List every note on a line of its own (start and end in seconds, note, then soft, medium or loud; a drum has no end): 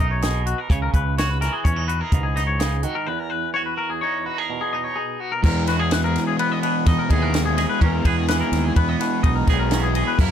0.00 0.53 B1 medium
0.00 0.23 F#2 medium
0.00 1.40 F#3 medium
0.00 0.73 D#4 medium
0.00 0.68 A#4 medium
0.00 0.11 D#5 medium
0.11 0.23 C#5 medium
0.22 0.70 B2 medium
0.22 0.46 G#4 medium
0.22 snare loud
0.22 closed hi-hat medium
0.46 0.58 F#4 medium
0.46 closed hi-hat medium
0.58 0.71 A#4 medium
0.70 0.88 C#2 loud
0.70 1.41 C#3 medium
0.70 0.82 C#5 medium
0.70 kick loud
0.70 closed hi-hat medium
0.82 0.94 A#4 medium
0.94 1.48 C#2 loud
0.94 1.18 B4 medium
0.94 kick medium
0.94 closed hi-hat medium
1.18 1.88 F#4 medium
1.18 1.30 C#5 medium
1.18 snare loud
1.18 closed hi-hat medium
1.30 1.41 B4 medium
1.41 3.78 E3 medium
1.41 1.53 A#4 medium
1.41 snare soft
1.41 closed hi-hat medium
1.53 1.65 G#4 medium
1.64 2.01 E2 medium
1.64 1.76 C#4 medium
1.64 1.87 C#5 medium
1.64 kick loud
1.64 closed hi-hat medium
1.76 2.35 D#4 medium
1.88 2.01 F#4 medium
1.88 2.00 B4 medium
1.88 closed hi-hat medium
2.00 3.07 G#4 soft
2.00 2.24 A#4 medium
2.12 2.84 C#2 loud
2.12 3.04 G#2 medium
2.12 kick loud
2.12 closed hi-hat medium
2.23 2.35 G#4 medium
2.36 3.10 D#4 medium
2.36 2.46 D#5 medium
2.36 snare soft
2.36 closed hi-hat medium
2.47 2.59 C#5 medium
2.59 2.83 C#3 medium
2.59 2.83 G#4 medium
2.59 snare loud
2.59 closed hi-hat medium
2.83 3.07 D#3 medium
2.83 2.95 F#4 medium
2.83 closed hi-hat medium
2.95 3.07 A#4 medium
3.07 4.97 E2 medium
3.07 3.19 B4 medium
3.19 3.30 A#4 medium
3.30 3.53 B4 medium
3.54 4.25 F#4 medium
3.54 3.65 C#5 medium
3.66 3.77 B4 medium
3.77 3.90 A#4 medium
3.90 4.02 G#4 medium
4.01 4.73 D#4 medium
4.01 4.25 C#5 medium
4.25 4.38 F#4 medium
4.25 4.37 B4 medium
4.37 5.45 G#4 medium
4.37 4.61 A#4 medium
4.50 5.44 B2 medium
4.61 4.73 G#4 medium
4.73 5.42 D#4 medium
4.73 4.84 D#5 medium
4.84 4.96 C#5 medium
4.96 5.20 G#4 medium
5.20 5.32 F#4 medium
5.32 5.43 A#4 medium
5.43 6.16 E2 loud
5.43 7.34 E2 medium
5.43 7.12 E3 medium
5.43 7.08 G#3 medium
5.43 7.10 B3 medium
5.43 7.09 E4 loud
5.43 5.67 A#4 medium
5.43 kick loud
5.43 crash loud
5.67 5.80 F#4 medium
5.67 5.79 B4 medium
5.67 snare soft
5.67 ride medium
5.79 5.92 G#4 medium
5.79 7.10 G#4 medium
5.91 6.04 B4 medium
5.91 snare loud
5.91 ride loud
6.04 6.27 A#4 medium
6.16 snare soft
6.16 ride medium
6.27 6.39 G#4 medium
6.39 7.84 B3 medium
6.39 6.52 B4 medium
6.39 ride loud
6.52 6.62 D#5 medium
6.63 7.82 B2 medium
6.63 6.87 B4 medium
6.63 ride medium
6.86 6.96 E2 loud
6.86 7.34 D#4 medium
6.86 6.98 D#5 medium
6.86 kick loud
6.86 snare soft
6.86 ride loud
6.99 7.10 A#4 medium
7.09 7.64 D#2 medium
7.09 7.81 E3 medium
7.09 7.80 G#3 medium
7.09 7.83 B3 medium
7.09 7.84 E4 medium
7.09 7.22 G#4 medium
7.09 7.57 G#4 medium
7.09 kick medium
7.09 ride medium
7.22 7.45 A#4 medium
7.34 snare loud
7.34 ride loud
7.45 7.58 G#4 medium
7.58 7.79 G#4 medium
7.58 7.69 D#5 medium
7.58 snare soft
7.58 ride medium
7.69 7.81 B4 medium
7.81 8.00 E2 loud
7.81 9.70 E2 medium
7.81 9.50 E3 medium
7.81 9.47 G#3 medium
7.81 9.48 B3 loud
7.81 7.93 C#4 medium
7.81 9.47 E4 loud
7.81 8.05 A#4 medium
7.81 kick loud
7.81 ride loud
8.05 8.41 E2 loud
8.05 9.48 G#4 medium
8.05 8.17 B4 medium
8.05 kick medium
8.05 ride medium
8.17 8.28 G#4 medium
8.28 10.31 E3 medium
8.28 8.40 B4 medium
8.28 snare loud
8.28 ride loud
8.40 8.65 A#4 medium
8.52 8.70 D#2 medium
8.52 snare soft
8.52 ride medium
8.65 8.76 G#4 medium
8.76 8.94 E2 medium
8.76 10.31 B3 medium
8.76 8.89 B4 medium
8.76 kick loud
8.76 ride loud
8.89 9.00 D#5 medium
9.00 10.19 B2 medium
9.00 9.23 B4 medium
9.00 snare soft
9.00 ride medium
9.23 9.42 B1 loud
9.23 9.71 D#4 medium
9.23 9.35 D#5 medium
9.23 kick loud
9.23 ride loud
9.35 9.47 A#4 medium
9.47 10.02 B1 medium
9.47 10.19 E3 medium
9.47 10.18 G#3 medium
9.47 10.20 B3 medium
9.47 10.21 E4 medium
9.47 9.59 G#4 medium
9.47 9.95 G#4 medium
9.47 kick medium
9.47 snare soft
9.47 ride medium
9.59 9.83 A#4 medium
9.71 10.19 E2 medium
9.71 9.83 C#4 medium
9.71 snare loud
9.71 ride loud
9.83 9.95 G#4 medium
9.95 10.17 G#4 medium
9.95 10.07 D#5 medium
9.95 ride medium
10.07 10.19 B4 medium
10.18 10.31 F#2 medium
10.18 10.31 F#2 loud
10.18 10.31 F#2 medium
10.18 10.31 C#3 medium
10.18 10.31 E3 medium
10.18 10.31 A#3 medium
10.18 10.31 E4 medium
10.18 10.31 E4 loud
10.18 10.31 A#4 medium
10.18 kick loud
10.18 crash loud